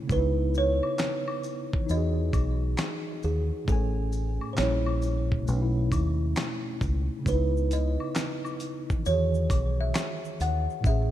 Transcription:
Already playing: B2 A3 C#4 E4
0.02 C#3
0.07 C#2 B3, kick, maracas
0.12 D#4 B4
0.18 E4
0.54 C#5, maracas
0.83 high woodblock
0.99 snare, clap, maracas
1.28 high woodblock
1.44 maracas
1.73 kick
1.81 E3
1.87 E2 D#4, maracas
1.91 F#4 D#5
1.97 G#4
2.33 B1, kick, high woodblock, maracas
2.78 snare, clap, maracas
3.23 D#2 G#4, maracas
3.65 A1 A2 A3, kick, maracas
3.69 C#4 A4 G#5
4.12 maracas
4.41 high woodblock
4.53 A#2 G3 C5
4.57 A#1 C#4 C#5, snare, clap, maracas
4.62 E4
4.86 high woodblock
5.02 maracas
5.32 kick
5.40 B2
5.45 B1 A3, maracas
5.51 C#4
5.56 D#4
5.62 E4
5.92 D#2, kick, high woodblock, maracas
6.36 snare, clap, maracas
6.81 C#2, kick, maracas
7.19 C#3
7.24 C#2 B3, kick, shaker, maracas
7.28 D#4 B4
7.34 E4
7.57 shaker
7.71 D#5, closed hi-hat, shaker, maracas
8.00 high woodblock
8.15 snare, clap, maracas, shaker
8.45 high woodblock, shaker
8.60 closed hi-hat, maracas, shaker
8.90 kick, shaker
8.98 E3
9.03 E2 D#3 C#5, shaker, maracas
9.08 F#4
9.13 G#4
9.34 shaker
9.50 B1, kick, closed hi-hat, high woodblock, maracas, shaker
9.81 E5
9.94 snare, clap, maracas, shaker
10.25 shaker
10.40 D#2 F#5, closed hi-hat, maracas, shaker
10.70 shaker
10.81 A2 A3, kick
10.85 A1 C#4 G#4 E5, maracas, shaker

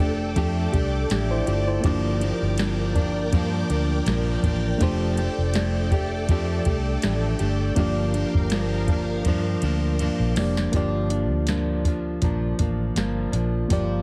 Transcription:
Already playing: F1 A3 D4 F4 G4 A4 C5 D5 G5 D6
0.00 A3 D4 G4
0.36 F2 F3 A3 D4 G4, kick, ride
0.72 C2 A3 D4 G4, kick, ride
1.09 A1 F3 A3 D4 G4, snare, ride
1.31 E4 C5
1.46 G1 A3 D4 F4 G4 D5, ride
1.68 E4 C5
1.81 G1 G2 A#3 D4 F4 A#4 G5, kick, ride
1.85 F3 A#3 D4 G4 D5
2.21 F3 A#3 D4, ride
2.42 G1
2.58 G2 F3 A#3 D4, snare, ride
2.95 F3 A#3 D4, kick, ride
3.33 G2 F3 A#3 D4, kick, ride
3.69 D2 F3 A#3 D4, ride
4.06 A#1 G2 F3 A#3 D4, snare, ride
4.43 A1 F3 A#3 D4, kick, ride
4.78 F1 F3 A3 D4 F4 G4 A4, kick, ride
4.82 D4 G4 C5
5.17 A3 D4 G4, ride
5.38 F1
5.54 F3 A3 D4 G4, snare, ride
5.91 A3 D4 G4, kick, ride
6.29 F2 F3 A3 D4 G4, kick, ride
6.65 C2 D4 G4, kick, ride
6.70 A3
7.02 A1 F3 A3 D4 G4, snare, ride
7.39 G1 A3 D4 G4, ride
7.75 G1 G2 F3 A#3 D4 F4 G4 A#4 F5, kick, ride
7.80 D5
8.14 F3 A#3 D4, ride
8.35 G1, kick
8.50 G2 F3 A#3, snare, ride
8.54 D4
8.88 A#3 D4, kick, ride
8.92 F3
9.25 G2 F3 A#3 D4, kick, ride
9.62 D2 A#3 D4, ride
9.67 F3
9.99 G2 F3 A#3 D4, ride
10.19 A#1
10.36 F1 A#3 D4 F4 G4 D5, snare, open hi-hat, ride
10.40 F3
10.57 snare
10.72 G1 G2 F3 A#3 F4 G4, kick, closed hi-hat
10.76 D4 D5
11.10 F3 A#3 D4, closed hi-hat
11.30 D2
11.47 G2 F3 A#3 D4, snare, closed hi-hat
11.85 F3 A#3 D4, kick, closed hi-hat
12.21 A#1 G2 F3 A#3 D4, kick, closed hi-hat
12.59 A1 F3 A#3 D4, kick, closed hi-hat
12.95 G1 G2 F3 A#3 D4, snare, closed hi-hat
13.32 A#1 F3 A#3 D4, closed hi-hat
13.68 G1 G2 F3 A#3 F4 G4, kick, closed hi-hat
13.73 D4 D5

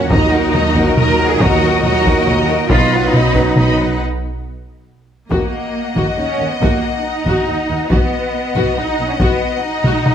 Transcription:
Already playing: A#3 C#4 F#4 C#5 F#5
0.09 D#2 A#2 F#3 A#3 D#4 A#4 D#5 A#5, taiko
0.32 A#3 A#4 F#5
0.53 D#2 F#3 D#5 A#5, taiko mid
0.75 A#3 A#4 F#5, taiko
0.97 D#2 F#3 A#4 D#5 A#5, taiko mid
1.19 A#3 A#4 F#5
1.31 G#4
1.41 D#2 F#3 F#4 D#5 A#5, taiko
1.62 A#3 A#4 F#5
1.84 D#2 F#3 F#4 D#5 A#5, taiko mid
2.05 A#3 A#4 F#5, taiko
2.27 D#2 F#3 D#5 A#5, taiko mid
2.50 A#3 A#4 F#5
2.70 B1 F#2 F#3 B3 D#4 F4 B4 D#5 B5, taiko
2.94 B3 B4 F#5
3.14 B1 D#4 D#5 B5, taiko mid
3.35 B3 B4 F#5, taiko
3.56 B1 D#4 D#5 B5, taiko mid
3.78 B3 B4 F#5
5.29 D#2 A#3 F#4 A#4 D#5 F#5, taiko
5.95 D#2 F#4, taiko
6.17 D#2 C#4 D#4
6.39 D#2 A#3
6.51 B3
6.61 D#2 A#3 F#4 A#4, taiko
7.04 D#4
7.26 D#2 F#4, taiko
7.47 D#2 D#4
7.69 D#2 A#3
7.89 B1 B3 F#4 D#5 F#5, taiko
8.55 B1 F#4, taiko
8.77 B1 D#4
8.99 B1 B3
9.09 C#4
9.20 B1 B3 F#4 D#5, taiko
9.64 D#4
9.84 B1 F#4, taiko mid
10.06 B1 D#4, taiko mid

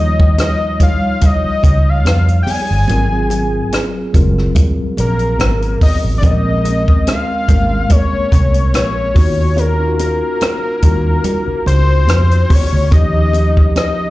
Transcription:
Already playing: D#2 F3 G3 D#4 F4 C#5 D#5
0.20 kick
0.38 D#5, cross-stick, closed hi-hat, high conga
0.78 G3 D#4 F4 C#5, kick, closed hi-hat, low conga
0.83 F5
1.21 D#5, kick, closed hi-hat, muted conga, low conga
1.44 muted fingered electric bass stroke
1.63 C#2, kick, closed hi-hat, muted conga
1.89 F5
2.05 F2, cross-stick, closed hi-hat, high conga
2.28 closed hi-hat
2.43 G5
2.47 G#5, open hi-hat, high conga
2.71 G1
2.88 G#1 F#3 C4 F4 A#4, closed hi-hat, muted conga
3.10 F#3 C4 F4 G#4
3.30 closed hi-hat, muted conga
3.72 cross-stick, closed hi-hat, high conga
4.13 F#1 F#3 C4 F4 A#4, kick, closed hi-hat, low conga
4.38 cross-stick
4.55 kick, closed hi-hat, muted conga, low conga
4.79 muted fingered electric bass stroke
4.97 A#1 A#4, closed hi-hat, muted conga
5.19 closed hi-hat
5.39 G#1, cross-stick, closed hi-hat, high conga
5.62 closed hi-hat
5.81 D#5, kick, open hi-hat, high conga
6.04 A1
6.18 G#3 D5
6.22 A#1 C4 C#4 A#4 D#5, kick, closed hi-hat, muted conga
6.44 G#3 C4 C#4 A#4
6.65 closed hi-hat, muted conga
6.88 kick
7.07 F5, cross-stick, closed hi-hat, high conga
7.47 G#1 G#3 A#3 C#4 A#4, kick, closed hi-hat, low conga
7.90 C#5, kick, closed hi-hat, muted conga, low conga
8.13 muted fingered electric bass stroke
8.32 C2, kick, closed hi-hat, muted conga
8.54 closed hi-hat
8.74 A#1 C#5, cross-stick, closed hi-hat, high conga
9.14 D#2 C#4 D#4 F4 F#4, kick, open hi-hat, high conga
9.57 A#4, closed hi-hat, muted conga
9.78 C#4 D#4 F4
9.88 F#4
9.99 A#4, closed hi-hat, muted conga
10.41 cross-stick, closed hi-hat, high conga
10.81 D#2 C#4 D#4 F4 F#4, kick, closed hi-hat, low conga
11.24 closed hi-hat, muted conga, low conga
11.48 muted fingered electric bass stroke
11.66 C#2 C5, closed hi-hat, muted conga
12.08 F2, cross-stick, closed hi-hat, high conga
12.31 closed hi-hat
12.50 C#5, kick, open hi-hat, high conga
12.73 D2
12.91 D#2 F3 C#4 D#4 G4 D#5, kick, closed hi-hat, muted conga
13.14 F3 C#4 D#4 G4
13.33 closed hi-hat, muted conga
13.57 kick
13.76 D#5, cross-stick, closed hi-hat, high conga

